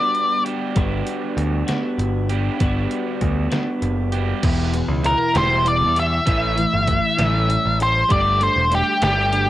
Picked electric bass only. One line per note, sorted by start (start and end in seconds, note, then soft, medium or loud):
0.76 1.01 G1 medium
1.37 1.62 D2 medium
1.98 2.48 G1 medium
2.60 2.85 G1 medium
3.21 3.46 D2 medium
3.82 4.32 F#1 medium
4.43 4.81 E1 medium
4.88 5.14 C#2 medium
5.35 5.83 E1 medium
5.81 6.18 E2 medium
6.27 6.64 A1 medium
6.73 6.98 G1 medium
7.19 7.56 A1 medium
7.65 8.02 A1 medium
8.11 8.48 G1 medium
8.56 8.81 E1 medium
9.02 9.48 G1 medium